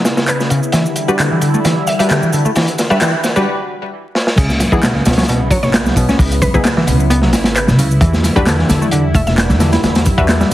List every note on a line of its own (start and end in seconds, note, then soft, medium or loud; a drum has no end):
0.00 0.70 C#3 medium
0.00 0.70 B3 medium
0.00 0.70 E4 medium
0.05 snare loud
0.05 closed hi-hat medium
0.05 shaker medium
0.17 snare loud
0.17 shaker soft
0.27 0.74 B4 medium
0.27 clap loud
0.27 closed hi-hat medium
0.27 shaker soft
0.40 snare soft
0.40 shaker soft
0.50 0.59 C#3 medium
0.50 closed hi-hat medium
0.50 shaker medium
0.63 shaker soft
0.72 3.44 D3 medium
0.72 0.85 E3 medium
0.72 3.44 G3 medium
0.72 3.44 E4 medium
0.72 snare medium
0.72 closed hi-hat medium
0.72 shaker soft
0.86 shaker soft
0.96 closed hi-hat medium
0.96 shaker medium
1.08 1.18 G3 medium
1.08 1.25 D4 medium
1.08 1.25 F#4 medium
1.08 1.25 G4 medium
1.08 1.25 B4 medium
1.08 shaker soft
1.19 1.30 D3 medium
1.19 snare soft
1.19 clap loud
1.19 closed hi-hat medium
1.19 shaker soft
1.31 1.39 E3 medium
1.42 1.54 D3 medium
1.42 closed hi-hat medium
1.42 shaker medium
1.54 1.58 A3 medium
1.54 shaker soft
1.65 1.76 E3 loud
1.65 snare medium
1.65 closed hi-hat medium
1.65 shaker soft
1.87 1.95 E5 medium
1.87 closed hi-hat medium
1.87 shaker medium
1.99 2.09 G3 medium
1.99 2.16 D4 medium
1.99 2.16 F#4 medium
1.99 2.16 G4 medium
1.99 2.16 B4 medium
1.99 2.06 E5 medium
1.99 closed hi-hat medium
1.99 shaker soft
2.09 2.21 D3 medium
2.09 snare medium
2.09 clap loud
2.09 closed hi-hat medium
2.09 shaker soft
2.23 2.30 E3 medium
2.23 shaker soft
2.33 2.45 D3 medium
2.33 closed hi-hat medium
2.33 shaker medium
2.45 2.50 A3 medium
2.45 shaker soft
2.56 2.67 E3 loud
2.56 snare medium
2.56 open hi-hat medium
2.56 shaker soft
2.68 closed hi-hat soft
2.68 shaker soft
2.78 snare medium
2.78 closed hi-hat medium
2.78 shaker medium
2.90 3.00 G3 medium
2.90 2.99 D4 medium
2.90 2.99 F#4 medium
2.90 2.99 G4 medium
2.90 2.99 B4 loud
2.90 3.36 E5 medium
2.90 shaker soft
3.00 3.13 E3 loud
3.00 snare medium
3.00 clap loud
3.00 closed hi-hat medium
3.00 shaker soft
3.24 snare medium
3.24 closed hi-hat medium
3.24 shaker medium
3.36 3.45 G3 medium
3.36 3.45 D4 medium
3.36 3.45 F#4 medium
3.36 3.45 G4 medium
3.36 3.45 B4 loud
3.36 shaker soft
4.15 snare medium
4.27 snare medium
4.38 4.66 C#2 loud
4.38 4.49 C#3 loud
4.38 7.98 C#3 medium
4.38 7.98 B3 medium
4.38 10.54 E4 medium
4.38 kick loud
4.38 closed hi-hat medium
4.38 crash medium
4.38 shaker soft
4.50 snare soft
4.50 muted conga soft
4.50 shaker soft
4.60 snare medium
4.60 closed hi-hat medium
4.60 open hi-hat medium
4.60 high conga loud
4.60 shaker medium
4.72 5.00 C#2 medium
4.72 4.82 E3 medium
4.72 4.89 B3 medium
4.72 4.89 D#4 medium
4.72 4.89 E4 medium
4.72 4.89 G#4 loud
4.72 kick medium
4.72 shaker soft
4.83 4.94 B2 loud
4.83 snare loud
4.83 clap loud
4.83 closed hi-hat medium
4.83 shaker soft
4.95 5.02 C#3 medium
4.95 snare soft
4.95 muted conga soft
5.06 5.50 C#2 medium
5.06 5.17 B2 medium
5.06 snare medium
5.06 closed hi-hat medium
5.06 open hi-hat medium
5.06 muted conga medium
5.06 shaker medium
5.11 snare medium
5.11 closed hi-hat medium
5.17 5.22 F#3 medium
5.17 snare loud
5.17 closed hi-hat medium
5.17 high conga medium
5.17 shaker soft
5.23 snare loud
5.23 closed hi-hat medium
5.28 5.40 B2 loud
5.28 closed hi-hat medium
5.28 shaker soft
5.50 5.85 G#1 loud
5.50 5.56 F#3 medium
5.50 5.59 C#5 medium
5.50 kick loud
5.50 closed hi-hat medium
5.50 open hi-hat medium
5.50 muted conga medium
5.50 shaker medium
5.63 5.70 C#5 medium
5.63 snare soft
5.63 low conga loud
5.63 shaker soft
5.74 snare loud
5.74 clap loud
5.74 closed hi-hat medium
5.74 shaker soft
5.85 6.14 C#2 loud
5.85 snare medium
5.85 high conga medium
5.85 shaker soft
5.96 6.05 B2 medium
5.96 kick medium
5.96 closed hi-hat medium
5.96 open hi-hat medium
5.96 shaker medium
6.09 6.16 C#4 medium
6.09 snare medium
6.09 shaker soft
6.19 6.48 C#2 loud
6.19 kick loud
6.19 open hi-hat medium
6.19 shaker soft
6.32 closed hi-hat soft
6.32 open hi-hat soft
6.32 shaker soft
6.41 6.50 B4 medium
6.41 kick loud
6.41 closed hi-hat medium
6.41 open hi-hat medium
6.41 high conga loud
6.41 low conga medium
6.41 shaker medium
6.54 6.83 C#2 medium
6.54 6.71 B3 medium
6.54 6.71 D#4 medium
6.54 6.71 E4 medium
6.54 6.71 G#4 medium
6.54 6.61 B4 medium
6.54 kick medium
6.54 shaker soft
6.64 snare loud
6.64 clap loud
6.64 closed hi-hat medium
6.64 shaker soft
6.76 6.84 E3 loud
6.76 snare medium
6.76 muted conga soft
6.87 7.33 C#2 medium
6.87 6.96 B2 medium
6.87 closed hi-hat medium
6.87 open hi-hat medium
6.87 shaker medium
6.98 high conga medium
6.98 shaker soft
7.10 7.19 B3 loud
7.10 closed hi-hat medium
7.10 shaker soft
7.22 7.30 F#3 medium
7.22 snare soft
7.33 7.70 G#1 loud
7.33 snare loud
7.33 closed hi-hat medium
7.33 open hi-hat medium
7.33 shaker medium
7.44 snare loud
7.44 closed hi-hat medium
7.44 shaker soft
7.55 8.01 B4 medium
7.55 clap loud
7.55 closed hi-hat medium
7.55 shaker soft
7.68 7.96 C#2 loud
7.68 snare soft
7.68 high conga loud
7.68 shaker soft
7.79 7.87 C#3 medium
7.79 closed hi-hat medium
7.79 open hi-hat medium
7.79 shaker medium
7.91 shaker soft
8.01 8.30 E2 loud
8.01 10.54 D3 medium
8.01 8.13 E3 loud
8.01 10.54 G3 medium
8.01 kick loud
8.01 closed hi-hat loud
8.01 shaker soft
8.13 snare soft
8.13 muted conga soft
8.13 shaker soft
8.23 snare soft
8.23 closed hi-hat medium
8.23 open hi-hat medium
8.23 high conga loud
8.23 shaker medium
8.36 8.64 E2 medium
8.36 8.45 G3 medium
8.36 8.53 D4 loud
8.36 8.53 F#4 medium
8.36 8.53 G4 medium
8.36 8.52 B4 loud
8.36 kick medium
8.36 shaker soft
8.46 8.58 D3 loud
8.46 snare loud
8.46 clap loud
8.46 closed hi-hat medium
8.46 shaker soft
8.59 8.66 E3 medium
8.59 snare soft
8.59 muted conga soft
8.69 9.16 E2 medium
8.69 8.81 D3 medium
8.69 snare medium
8.69 closed hi-hat medium
8.69 open hi-hat medium
8.69 muted conga medium
8.69 shaker medium
8.81 8.86 A3 medium
8.81 high conga medium
8.81 shaker soft
8.91 9.04 D3 loud
8.91 closed hi-hat medium
8.91 shaker soft
9.14 9.51 E1 loud
9.14 9.20 A3 medium
9.14 9.23 E5 medium
9.14 kick loud
9.14 closed hi-hat medium
9.14 open hi-hat medium
9.14 muted conga medium
9.14 shaker medium
9.27 9.34 E5 medium
9.27 snare soft
9.27 low conga loud
9.27 shaker soft
9.38 snare loud
9.38 clap loud
9.38 closed hi-hat medium
9.38 shaker soft
9.49 9.78 E2 loud
9.49 snare medium
9.49 high conga loud
9.49 shaker soft
9.60 9.69 D3 medium
9.60 snare loud
9.60 closed hi-hat medium
9.60 open hi-hat medium
9.60 shaker medium
9.73 9.80 E4 medium
9.73 snare loud
9.73 closed hi-hat medium
9.73 shaker soft
9.83 10.12 E2 loud
9.83 snare loud
9.83 closed hi-hat medium
9.83 shaker soft
9.95 snare loud
9.95 closed hi-hat medium
9.95 open hi-hat soft
9.95 shaker soft
10.05 kick medium
10.05 closed hi-hat medium
10.05 open hi-hat medium
10.05 high conga medium
10.05 low conga medium
10.05 shaker medium
10.18 10.46 E2 medium
10.18 10.34 D4 medium
10.18 10.34 F#4 medium
10.18 10.34 G4 medium
10.18 10.34 B4 medium
10.18 10.54 E5 medium
10.18 kick loud
10.18 shaker soft
10.29 snare loud
10.29 clap loud
10.29 closed hi-hat medium
10.29 shaker soft
10.41 10.48 G3 loud
10.41 snare medium
10.41 muted conga soft
10.41 shaker soft